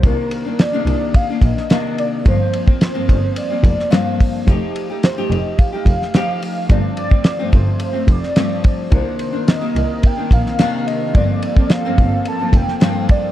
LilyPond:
<<
  \new Staff \with { instrumentName = "Soft synth lead" } { \time 4/4 \key c \dorian \tempo 4 = 108 bes'4 d''4 f''16. f''32 ees''4 d''8 | c''4 c''4 d''4 f''8. r16 | r4 c''8 ees''8 f''2 | d''8 d''4 c''8 c''8 d''8 d''8 d''8 |
c''4 ees''4 g''8 f''4 ees''8 | d''4 f''4 a''8 g''4 d''8 | }
  \new Staff \with { instrumentName = "Analog synth pad" } { \time 4/4 \key c \dorian r1 | r1 | r1 | r1 |
<ees bes c' bes'>1 | <f bes a'>1 | }
  \new Staff \with { instrumentName = "Nylon-string guitar" } { \time 4/4 \key c \dorian <c ees bes d'>8. <ees bes d'>8 <c ees bes d'>4 <ees bes d'>8. <c ees bes d'>4 | <g, f bes c'>8. <f bes c'>8 <g, f bes c'>4 <f bes c'>8. <g, f bes c'>4 | <f a ees' g'>8. <a ees' g'>8 <f a ees' g'>4 <a ees' g'>8. <f a ees' g'>4 | <g, f a c'>8. <f a c'>8 <g, f a c'>4 <f a c'>8. <g, f a c'>4 |
<c ees bes d'>8. <ees bes d'>8 <c ees bes>4 <ees bes d'>8. <c ees bes d'>4 | <g, f bes c'>8. <f bes c'>8 <g, f bes c'>4 <f bes c'>8. <g, f bes c'>4 | }
  \new Staff \with { instrumentName = "Double bass" } { \clef bass \time 4/4 \key c \dorian c,4~ c,16 r16 c,4 bes,,4 r8 | g,,4~ g,,16 r16 g,,4 f,,4 r8 | f,,4~ f,,16 r16 f,,4 f,,4 r8 | g,,4~ g,,16 r16 g,,4 f,,4 r8 |
c,4~ c,16 r16 c,4 bes,,4 r8 | g,,4~ g,,16 r16 g,,4 f,,4 r8 | }
  \new DrumStaff \with { instrumentName = "Drums" } \drummode { \time 4/4 <bd cymr>8 cymr8 <cymr sn>8 cymr8 <bd cymr>8 <bd cymr>16 sn16 <cymr sn>8 cymr8 | <bd cymr>8 cymr16 bd16 <cymr sn>8 <bd cymr>8 cymr8 <bd cymr>16 sn16 <cymr sn>8 <hho bd cymr>8 | <hhp bd cymr>8 cymr8 <cymr sn>8 cymr8 <bd cymr>8 <bd cymr>16 sn16 <cymr sn>8 <hho cymr>8 | <hhp bd cymr>8 cymr16 bd16 <cymr sn>8 <bd cymr>8 cymr8 <bd cymr>16 sn16 <cymr sn>8 <bd cymr>8 |
<bd cymr>8 cymr8 <cymr sn>8 cymr8 <bd cymr>8 <bd cymr>16 sn16 <cymr sn>8 cymr8 | <bd cymr>8 cymr16 bd16 <cymr sn>8 <bd cymr>8 cymr8 <bd cymr>16 sn16 <cymr sn>8 <bd cymr>8 | }
>>